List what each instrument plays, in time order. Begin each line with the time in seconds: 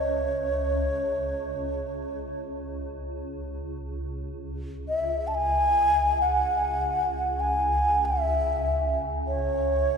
Already playing: synth drone C#2, xiao C#5
3.44 synth drone C#2
4.88 xiao E5
5.27 xiao A5
5.35 xiao G#5
6.21 xiao F#5
7.40 xiao G#5
8.05 xiao E5
9.28 xiao C#5